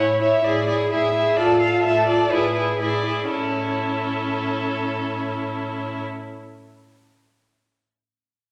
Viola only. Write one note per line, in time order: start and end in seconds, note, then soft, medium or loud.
0.00 0.20 E4 soft
0.21 0.44 E4 soft
0.44 0.67 E4 soft
0.68 0.90 E4 soft
0.91 1.13 E4 soft
1.14 1.37 E4 soft
1.38 1.59 F4 soft
1.60 1.83 F4 soft
1.83 2.06 F4 soft
2.07 2.29 F4 soft
2.30 2.54 E4 soft
2.55 2.79 E4 soft
2.80 3.04 E4 soft
3.05 3.29 E4 soft
3.31 6.04 C#4 soft